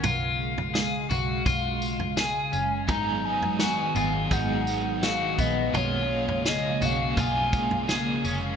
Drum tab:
TB |x---x-x-x-x-x-x-|x---x-x-x-x-x-x-|x---x-x-x-x-x-x-|
SD |----o-------o---|----o-------o---|----o-------o---|
FT |o--o--o-o--o----|o--o--o-o-------|o--o--o-o--o----|
BD |--------o-------|o-------o-----o-|--------o-o-----|